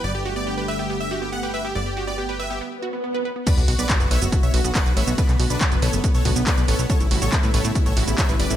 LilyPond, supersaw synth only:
\new Staff \with { instrumentName = "Supersaw synth" } { \time 4/4 \key b \minor \tempo 4 = 140 d''16 g'16 g'16 d''16 g'16 g'16 e''16 g'16 g'16 e''16 g'16 g'16 fis''16 g'16 e''16 g'16 | d''16 g'16 g'16 d''16 g'16 g'16 e''16 g'16 r2 | <b' d''>16 fis'16 fis'16 <b' d''>16 fis'16 fis'16 <cis'' e''>16 fis'16 fis'16 <cis'' e''>16 fis'16 fis'16 <d'' fis''>16 fis'16 <cis'' e''>16 fis'16 | <d' b'>16 b16 b16 <d' b'>16 b16 b16 <a' cis''>16 b16 b16 <a' cis''>16 b16 b16 <b' d''>16 b16 <a' cis''>16 b16 |
<a' cis''>16 e'16 e'16 <a' cis''>16 e'16 e'16 <a' cis''>16 e'16 e'16 <a' cis''>16 e'16 e'16 <cis'' e''>16 e'16 <b' d''>16 e'16 | }